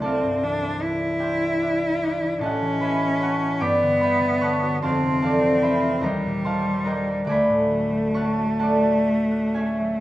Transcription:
0.00 2.44 C2 medium
0.00 0.45 C4 medium
0.00 0.82 D4 medium
0.00 1.01 E4 medium
0.00 2.41 A4 medium
0.00 1.20 C5 medium
0.00 2.44 D5 medium
0.00 0.42 E5 medium
0.00 1.19 G5 medium
0.00 2.05 A5 loud
0.00 2.43 C6 loud
0.00 1.98 D6 medium
0.06 2.44 F5 medium
0.23 2.44 G2 soft
0.43 2.21 E3 soft
0.43 0.83 D4 medium
0.63 2.44 C4 medium
0.82 1.19 D4 medium
0.82 2.43 E4 medium
1.02 1.41 E4 medium
1.19 1.61 D4 medium
1.19 2.44 G4 medium
1.19 2.44 C5 medium
1.19 2.44 G5 medium
1.24 2.81 E5 medium
1.42 1.81 E4 medium
1.62 2.02 D4 medium
1.82 3.19 E4 medium
2.03 2.45 D4 medium
2.22 2.45 E3 medium
2.39 3.65 A1 medium
2.39 3.65 A2 medium
2.39 3.63 C#4 medium
2.39 3.65 A4 medium
2.39 3.20 A5 loud
2.43 3.65 D#5 medium
2.43 3.20 F#5 medium
2.61 3.65 E3 soft
2.80 3.65 G#3 medium
2.80 4.01 B4 medium
2.80 3.65 E5 medium
2.80 3.65 G#5 medium
2.80 3.49 B5 loud
3.01 3.40 C#4 medium
3.19 3.64 E4 medium
3.19 3.64 C#5 medium
3.19 4.41 F#5 medium
3.19 3.65 A5 medium
3.19 3.64 C#6 loud
3.41 3.65 C#4 medium
3.60 4.86 G2 medium
3.60 4.83 B3 medium
3.60 4.86 D5 medium
3.60 4.01 G5 medium
3.60 4.00 B5 medium
3.60 4.86 D6 loud
3.82 4.21 D3 medium
4.00 4.86 G3 medium
4.00 4.87 B4 medium
4.00 4.87 G5 medium
4.00 4.86 B5 loud
4.04 5.62 E5 medium
4.22 4.86 D3 medium
4.40 4.86 B3 medium
4.40 4.86 C#5 medium
4.40 4.86 F#5 medium
4.40 4.82 A5 medium
4.40 5.11 C#6 loud
4.63 4.86 F#4 medium
4.82 6.07 F1 medium
4.82 6.07 F2 medium
4.82 6.05 C4 loud
4.82 6.07 C5 medium
4.82 5.23 F5 medium
4.82 5.21 A5 medium
4.82 6.07 C6 loud
5.03 6.07 C3 medium
5.21 6.07 E3 medium
5.21 6.07 A4 medium
5.21 6.07 F5 medium
5.21 6.07 A5 loud
5.26 7.27 D5 medium
5.43 6.07 A3 medium
5.61 6.07 C4 medium
5.61 6.07 B4 medium
5.61 6.07 E5 medium
5.61 6.02 G5 medium
5.61 6.32 B5 loud
5.83 6.07 F4 medium
6.01 7.32 D#2 medium
6.01 7.26 G3 medium
6.01 6.85 A#4 medium
6.01 6.85 D#5 medium
6.01 6.84 A#5 loud
6.06 6.85 G5 medium
6.26 7.32 A#2 medium
6.45 7.32 D#3 medium
6.45 7.32 C5 medium
6.45 7.32 F5 medium
6.45 8.15 A5 medium
6.45 7.15 C6 loud
6.66 7.32 G3 medium
6.84 10.00 D4 medium
6.84 7.32 A#4 medium
6.84 7.32 D#5 medium
6.84 7.32 G5 medium
6.84 7.31 A#5 loud
7.07 7.32 G4 medium
7.25 10.00 D2 medium
7.25 10.00 A3 medium
7.25 8.60 D5 medium
7.25 10.00 D6 loud
7.29 9.53 G#5 medium
7.29 10.00 B5 medium
7.49 10.00 A2 medium
7.71 9.80 F#3 soft
7.93 10.00 A3 medium
8.14 8.59 C#4 medium
8.14 9.54 C#5 medium
8.14 8.59 F#5 medium
8.14 10.00 C#6 loud
8.18 8.58 A5 medium
8.38 8.83 F#4 medium
8.59 9.06 C#4 medium
8.59 10.00 A4 medium
8.59 10.00 D5 medium
8.59 10.00 F#5 medium
8.59 10.00 A5 loud
8.84 9.30 F#4 medium
9.08 9.53 C#4 medium
9.31 10.00 F#4 medium
9.54 10.00 C#4 medium
9.54 10.00 G#4 medium
9.54 10.00 C#5 medium
9.54 10.00 E5 medium
9.54 10.00 G#5 loud
9.81 10.00 F#3 soft

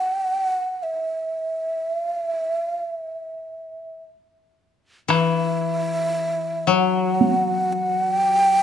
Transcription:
0.00 0.84 F#5 medium
0.83 1.97 E5 medium
1.97 2.27 F5 medium
2.27 2.61 E5 medium
2.61 2.92 F5 medium
2.92 4.04 E5 medium
5.08 8.24 E3 medium
5.08 6.70 E5 medium
5.08 taiko rim medium
6.67 8.63 F#3 medium
6.67 7.73 F#5 medium
7.21 taiko high medium
7.73 8.10 F#5 loud
8.10 8.63 G5 loud

